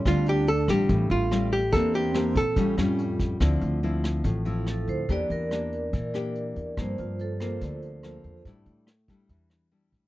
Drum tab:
HH |xxxxxxxx|xxxxxxxx|xxxxxxxx|xxxxxxxx|
SD |r--r--r-|--r--r--|r--r--r-|--r--r--|
BD |o---o---|o--oo--o|o---o---|o---o---|

HH |xxxxxxxx|xxxxxxxx|
SD |r--r--r-|--r--r--|
BD |o---o---|o--oo--o|